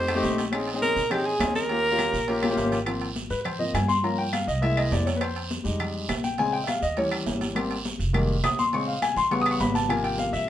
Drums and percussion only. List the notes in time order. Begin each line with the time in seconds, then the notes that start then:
0.08 high conga, high timbale, claves
0.23 high conga, low timbale, short guiro
0.38 high conga, high timbale, short guiro
0.53 high conga, high timbale, long guiro, claves
0.68 high conga, high timbale
0.82 high conga, low timbale, short guiro
0.97 high conga, short guiro
1.11 high conga, low conga, high timbale, long guiro, claves
1.26 high conga
1.40 high conga, high timbale, low timbale, short guiro, claves
1.55 high conga, short guiro
1.69 high conga, high timbale, long guiro
1.85 high conga
1.99 high conga, high timbale, low timbale, short guiro, claves
2.14 short guiro
2.28 high conga, high timbale, long guiro
2.43 high conga, high timbale, claves
2.57 high conga, low timbale, short guiro
2.72 low conga, high timbale, short guiro
2.86 high timbale, long guiro, claves
3.01 high conga, high timbale
3.16 high conga, low timbale, short guiro
3.30 high conga, short guiro
3.45 high conga, low conga, high timbale, long guiro, claves
3.60 high conga, low conga
3.74 high conga, high timbale, low timbale, short guiro, claves
3.89 high conga, short guiro
4.04 high conga, high timbale, long guiro
4.33 high conga, high timbale, low timbale, short guiro, claves
4.48 short guiro
4.63 high conga, high timbale, long guiro
4.77 high conga, high timbale, claves
4.92 high conga, low timbale, short guiro
5.07 high conga, high timbale, short guiro
5.21 high conga, high timbale, long guiro, claves
5.36 high conga, high timbale
5.50 high conga, low timbale, short guiro
5.65 high conga, short guiro
5.80 high conga, low conga, high timbale, long guiro, claves
5.95 high conga
6.09 high conga, high timbale, low timbale, short guiro, claves
6.23 high conga, short guiro
6.38 high conga, high timbale, long guiro
6.67 high conga, high timbale, low timbale, short guiro, claves
6.82 short guiro
6.97 high conga, high timbale, long guiro
7.11 high conga, high timbale, claves
7.26 high conga, low timbale, short guiro
7.41 high conga, high timbale, short guiro
7.56 high conga, high timbale, long guiro, claves
7.71 high conga, high timbale
7.85 high conga, low timbale, short guiro
8.00 high conga, short guiro
8.14 high conga, low conga, high timbale, long guiro, claves
8.29 high conga
8.44 high conga, high timbale, low timbale, short guiro, claves
8.58 high conga, short guiro
8.73 high conga, high timbale, long guiro
8.88 high conga
9.02 high conga, high timbale, low timbale, short guiro, claves
9.17 short guiro
9.31 high timbale, long guiro
9.46 high timbale, claves
9.60 high conga, low timbale, short guiro
9.75 high conga, high timbale, short guiro
9.90 high conga, high timbale, long guiro, claves
10.04 high conga, high timbale
10.18 high conga, low timbale, short guiro
10.33 high conga, short guiro